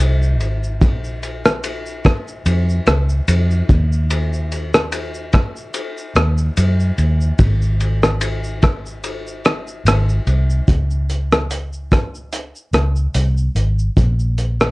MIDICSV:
0, 0, Header, 1, 3, 480
1, 0, Start_track
1, 0, Key_signature, -5, "major"
1, 0, Tempo, 821918
1, 476, Time_signature, 4, 2, 24, 8
1, 8591, End_track
2, 0, Start_track
2, 0, Title_t, "Fingered electric bass"
2, 0, Program_c, 0, 33
2, 0, Note_on_c, 0, 36, 97
2, 229, Note_off_c, 0, 36, 0
2, 229, Note_on_c, 0, 32, 99
2, 476, Note_off_c, 0, 32, 0
2, 476, Note_on_c, 0, 34, 113
2, 1413, Note_off_c, 0, 34, 0
2, 1435, Note_on_c, 0, 41, 92
2, 1628, Note_off_c, 0, 41, 0
2, 1676, Note_on_c, 0, 37, 94
2, 1868, Note_off_c, 0, 37, 0
2, 1916, Note_on_c, 0, 41, 108
2, 2108, Note_off_c, 0, 41, 0
2, 2158, Note_on_c, 0, 39, 106
2, 3223, Note_off_c, 0, 39, 0
2, 3594, Note_on_c, 0, 39, 86
2, 3787, Note_off_c, 0, 39, 0
2, 3840, Note_on_c, 0, 42, 99
2, 4030, Note_off_c, 0, 42, 0
2, 4077, Note_on_c, 0, 39, 97
2, 4269, Note_off_c, 0, 39, 0
2, 4316, Note_on_c, 0, 32, 116
2, 5733, Note_off_c, 0, 32, 0
2, 5752, Note_on_c, 0, 32, 93
2, 5946, Note_off_c, 0, 32, 0
2, 5997, Note_on_c, 0, 36, 100
2, 6189, Note_off_c, 0, 36, 0
2, 6237, Note_on_c, 0, 37, 95
2, 7306, Note_off_c, 0, 37, 0
2, 7435, Note_on_c, 0, 37, 93
2, 7628, Note_off_c, 0, 37, 0
2, 7678, Note_on_c, 0, 36, 97
2, 7870, Note_off_c, 0, 36, 0
2, 7913, Note_on_c, 0, 32, 85
2, 8107, Note_off_c, 0, 32, 0
2, 8158, Note_on_c, 0, 34, 107
2, 8591, Note_off_c, 0, 34, 0
2, 8591, End_track
3, 0, Start_track
3, 0, Title_t, "Drums"
3, 130, Note_on_c, 9, 82, 46
3, 189, Note_off_c, 9, 82, 0
3, 236, Note_on_c, 9, 51, 39
3, 236, Note_on_c, 9, 82, 52
3, 294, Note_off_c, 9, 51, 0
3, 294, Note_off_c, 9, 82, 0
3, 371, Note_on_c, 9, 82, 47
3, 430, Note_off_c, 9, 82, 0
3, 476, Note_on_c, 9, 36, 123
3, 476, Note_on_c, 9, 51, 68
3, 476, Note_on_c, 9, 82, 84
3, 534, Note_off_c, 9, 36, 0
3, 535, Note_off_c, 9, 51, 0
3, 535, Note_off_c, 9, 82, 0
3, 609, Note_on_c, 9, 82, 48
3, 667, Note_off_c, 9, 82, 0
3, 718, Note_on_c, 9, 51, 46
3, 718, Note_on_c, 9, 82, 55
3, 777, Note_off_c, 9, 51, 0
3, 777, Note_off_c, 9, 82, 0
3, 848, Note_on_c, 9, 82, 59
3, 850, Note_on_c, 9, 37, 95
3, 906, Note_off_c, 9, 82, 0
3, 909, Note_off_c, 9, 37, 0
3, 956, Note_on_c, 9, 51, 76
3, 956, Note_on_c, 9, 82, 93
3, 1014, Note_off_c, 9, 51, 0
3, 1014, Note_off_c, 9, 82, 0
3, 1086, Note_on_c, 9, 82, 51
3, 1144, Note_off_c, 9, 82, 0
3, 1195, Note_on_c, 9, 51, 49
3, 1195, Note_on_c, 9, 82, 57
3, 1197, Note_on_c, 9, 36, 106
3, 1202, Note_on_c, 9, 37, 96
3, 1254, Note_off_c, 9, 51, 0
3, 1254, Note_off_c, 9, 82, 0
3, 1256, Note_off_c, 9, 36, 0
3, 1261, Note_off_c, 9, 37, 0
3, 1331, Note_on_c, 9, 82, 53
3, 1389, Note_off_c, 9, 82, 0
3, 1436, Note_on_c, 9, 51, 76
3, 1436, Note_on_c, 9, 82, 94
3, 1494, Note_off_c, 9, 51, 0
3, 1494, Note_off_c, 9, 82, 0
3, 1573, Note_on_c, 9, 82, 56
3, 1631, Note_off_c, 9, 82, 0
3, 1674, Note_on_c, 9, 51, 44
3, 1674, Note_on_c, 9, 82, 60
3, 1679, Note_on_c, 9, 37, 99
3, 1732, Note_off_c, 9, 51, 0
3, 1732, Note_off_c, 9, 82, 0
3, 1738, Note_off_c, 9, 37, 0
3, 1806, Note_on_c, 9, 82, 54
3, 1865, Note_off_c, 9, 82, 0
3, 1916, Note_on_c, 9, 51, 80
3, 1916, Note_on_c, 9, 82, 95
3, 1974, Note_off_c, 9, 51, 0
3, 1974, Note_off_c, 9, 82, 0
3, 2049, Note_on_c, 9, 82, 46
3, 2107, Note_off_c, 9, 82, 0
3, 2157, Note_on_c, 9, 36, 105
3, 2159, Note_on_c, 9, 51, 41
3, 2159, Note_on_c, 9, 82, 48
3, 2215, Note_off_c, 9, 36, 0
3, 2217, Note_off_c, 9, 51, 0
3, 2217, Note_off_c, 9, 82, 0
3, 2292, Note_on_c, 9, 82, 49
3, 2350, Note_off_c, 9, 82, 0
3, 2397, Note_on_c, 9, 51, 70
3, 2397, Note_on_c, 9, 82, 86
3, 2455, Note_off_c, 9, 51, 0
3, 2455, Note_off_c, 9, 82, 0
3, 2530, Note_on_c, 9, 82, 51
3, 2588, Note_off_c, 9, 82, 0
3, 2639, Note_on_c, 9, 51, 47
3, 2639, Note_on_c, 9, 82, 58
3, 2697, Note_off_c, 9, 51, 0
3, 2697, Note_off_c, 9, 82, 0
3, 2768, Note_on_c, 9, 82, 56
3, 2770, Note_on_c, 9, 37, 94
3, 2826, Note_off_c, 9, 82, 0
3, 2829, Note_off_c, 9, 37, 0
3, 2875, Note_on_c, 9, 51, 71
3, 2875, Note_on_c, 9, 82, 85
3, 2933, Note_off_c, 9, 51, 0
3, 2933, Note_off_c, 9, 82, 0
3, 3004, Note_on_c, 9, 82, 52
3, 3062, Note_off_c, 9, 82, 0
3, 3112, Note_on_c, 9, 51, 46
3, 3112, Note_on_c, 9, 82, 57
3, 3117, Note_on_c, 9, 36, 104
3, 3119, Note_on_c, 9, 37, 93
3, 3170, Note_off_c, 9, 51, 0
3, 3170, Note_off_c, 9, 82, 0
3, 3175, Note_off_c, 9, 36, 0
3, 3177, Note_off_c, 9, 37, 0
3, 3248, Note_on_c, 9, 82, 52
3, 3306, Note_off_c, 9, 82, 0
3, 3352, Note_on_c, 9, 51, 73
3, 3352, Note_on_c, 9, 82, 93
3, 3410, Note_off_c, 9, 51, 0
3, 3410, Note_off_c, 9, 82, 0
3, 3490, Note_on_c, 9, 82, 63
3, 3548, Note_off_c, 9, 82, 0
3, 3594, Note_on_c, 9, 51, 42
3, 3594, Note_on_c, 9, 82, 57
3, 3600, Note_on_c, 9, 37, 103
3, 3653, Note_off_c, 9, 51, 0
3, 3653, Note_off_c, 9, 82, 0
3, 3658, Note_off_c, 9, 37, 0
3, 3724, Note_on_c, 9, 82, 59
3, 3783, Note_off_c, 9, 82, 0
3, 3837, Note_on_c, 9, 51, 77
3, 3837, Note_on_c, 9, 82, 100
3, 3896, Note_off_c, 9, 51, 0
3, 3896, Note_off_c, 9, 82, 0
3, 3971, Note_on_c, 9, 82, 46
3, 4029, Note_off_c, 9, 82, 0
3, 4077, Note_on_c, 9, 51, 39
3, 4077, Note_on_c, 9, 82, 50
3, 4135, Note_off_c, 9, 51, 0
3, 4135, Note_off_c, 9, 82, 0
3, 4209, Note_on_c, 9, 82, 51
3, 4268, Note_off_c, 9, 82, 0
3, 4314, Note_on_c, 9, 51, 68
3, 4314, Note_on_c, 9, 82, 84
3, 4316, Note_on_c, 9, 36, 107
3, 4373, Note_off_c, 9, 51, 0
3, 4373, Note_off_c, 9, 82, 0
3, 4375, Note_off_c, 9, 36, 0
3, 4449, Note_on_c, 9, 82, 52
3, 4507, Note_off_c, 9, 82, 0
3, 4558, Note_on_c, 9, 51, 46
3, 4558, Note_on_c, 9, 82, 59
3, 4616, Note_off_c, 9, 51, 0
3, 4616, Note_off_c, 9, 82, 0
3, 4689, Note_on_c, 9, 82, 56
3, 4691, Note_on_c, 9, 37, 85
3, 4747, Note_off_c, 9, 82, 0
3, 4750, Note_off_c, 9, 37, 0
3, 4795, Note_on_c, 9, 51, 78
3, 4795, Note_on_c, 9, 82, 92
3, 4854, Note_off_c, 9, 51, 0
3, 4854, Note_off_c, 9, 82, 0
3, 4927, Note_on_c, 9, 82, 53
3, 4986, Note_off_c, 9, 82, 0
3, 5037, Note_on_c, 9, 51, 46
3, 5037, Note_on_c, 9, 82, 54
3, 5040, Note_on_c, 9, 36, 100
3, 5044, Note_on_c, 9, 37, 97
3, 5095, Note_off_c, 9, 51, 0
3, 5095, Note_off_c, 9, 82, 0
3, 5098, Note_off_c, 9, 36, 0
3, 5102, Note_off_c, 9, 37, 0
3, 5174, Note_on_c, 9, 82, 61
3, 5232, Note_off_c, 9, 82, 0
3, 5278, Note_on_c, 9, 51, 71
3, 5278, Note_on_c, 9, 82, 95
3, 5336, Note_off_c, 9, 51, 0
3, 5336, Note_off_c, 9, 82, 0
3, 5414, Note_on_c, 9, 82, 59
3, 5472, Note_off_c, 9, 82, 0
3, 5518, Note_on_c, 9, 51, 44
3, 5518, Note_on_c, 9, 82, 50
3, 5523, Note_on_c, 9, 37, 98
3, 5576, Note_off_c, 9, 51, 0
3, 5576, Note_off_c, 9, 82, 0
3, 5582, Note_off_c, 9, 37, 0
3, 5650, Note_on_c, 9, 82, 58
3, 5708, Note_off_c, 9, 82, 0
3, 5761, Note_on_c, 9, 51, 74
3, 5761, Note_on_c, 9, 82, 95
3, 5770, Note_on_c, 9, 37, 89
3, 5819, Note_off_c, 9, 51, 0
3, 5819, Note_off_c, 9, 82, 0
3, 5829, Note_off_c, 9, 37, 0
3, 5893, Note_on_c, 9, 82, 46
3, 5952, Note_off_c, 9, 82, 0
3, 5997, Note_on_c, 9, 51, 43
3, 5997, Note_on_c, 9, 82, 51
3, 6056, Note_off_c, 9, 51, 0
3, 6056, Note_off_c, 9, 82, 0
3, 6132, Note_on_c, 9, 82, 51
3, 6190, Note_off_c, 9, 82, 0
3, 6237, Note_on_c, 9, 36, 106
3, 6237, Note_on_c, 9, 42, 73
3, 6237, Note_on_c, 9, 82, 73
3, 6296, Note_off_c, 9, 36, 0
3, 6296, Note_off_c, 9, 42, 0
3, 6296, Note_off_c, 9, 82, 0
3, 6369, Note_on_c, 9, 82, 46
3, 6427, Note_off_c, 9, 82, 0
3, 6480, Note_on_c, 9, 42, 52
3, 6480, Note_on_c, 9, 82, 48
3, 6538, Note_off_c, 9, 42, 0
3, 6538, Note_off_c, 9, 82, 0
3, 6611, Note_on_c, 9, 82, 53
3, 6614, Note_on_c, 9, 37, 83
3, 6669, Note_off_c, 9, 82, 0
3, 6672, Note_off_c, 9, 37, 0
3, 6720, Note_on_c, 9, 42, 78
3, 6720, Note_on_c, 9, 82, 83
3, 6779, Note_off_c, 9, 42, 0
3, 6779, Note_off_c, 9, 82, 0
3, 6850, Note_on_c, 9, 82, 44
3, 6908, Note_off_c, 9, 82, 0
3, 6960, Note_on_c, 9, 36, 95
3, 6960, Note_on_c, 9, 42, 49
3, 6960, Note_on_c, 9, 82, 56
3, 6966, Note_on_c, 9, 37, 83
3, 7018, Note_off_c, 9, 42, 0
3, 7018, Note_off_c, 9, 82, 0
3, 7019, Note_off_c, 9, 36, 0
3, 7025, Note_off_c, 9, 37, 0
3, 7094, Note_on_c, 9, 82, 49
3, 7153, Note_off_c, 9, 82, 0
3, 7198, Note_on_c, 9, 42, 82
3, 7198, Note_on_c, 9, 82, 87
3, 7257, Note_off_c, 9, 42, 0
3, 7257, Note_off_c, 9, 82, 0
3, 7332, Note_on_c, 9, 82, 53
3, 7391, Note_off_c, 9, 82, 0
3, 7437, Note_on_c, 9, 42, 53
3, 7437, Note_on_c, 9, 82, 50
3, 7442, Note_on_c, 9, 37, 87
3, 7495, Note_off_c, 9, 42, 0
3, 7495, Note_off_c, 9, 82, 0
3, 7500, Note_off_c, 9, 37, 0
3, 7568, Note_on_c, 9, 82, 53
3, 7627, Note_off_c, 9, 82, 0
3, 7676, Note_on_c, 9, 42, 80
3, 7676, Note_on_c, 9, 82, 81
3, 7735, Note_off_c, 9, 42, 0
3, 7735, Note_off_c, 9, 82, 0
3, 7810, Note_on_c, 9, 82, 45
3, 7869, Note_off_c, 9, 82, 0
3, 7918, Note_on_c, 9, 42, 49
3, 7918, Note_on_c, 9, 82, 43
3, 7976, Note_off_c, 9, 42, 0
3, 7976, Note_off_c, 9, 82, 0
3, 8053, Note_on_c, 9, 82, 46
3, 8111, Note_off_c, 9, 82, 0
3, 8157, Note_on_c, 9, 36, 99
3, 8159, Note_on_c, 9, 42, 74
3, 8159, Note_on_c, 9, 82, 77
3, 8216, Note_off_c, 9, 36, 0
3, 8218, Note_off_c, 9, 42, 0
3, 8218, Note_off_c, 9, 82, 0
3, 8289, Note_on_c, 9, 82, 46
3, 8347, Note_off_c, 9, 82, 0
3, 8398, Note_on_c, 9, 42, 52
3, 8398, Note_on_c, 9, 82, 52
3, 8456, Note_off_c, 9, 42, 0
3, 8456, Note_off_c, 9, 82, 0
3, 8529, Note_on_c, 9, 82, 45
3, 8532, Note_on_c, 9, 37, 84
3, 8588, Note_off_c, 9, 82, 0
3, 8590, Note_off_c, 9, 37, 0
3, 8591, End_track
0, 0, End_of_file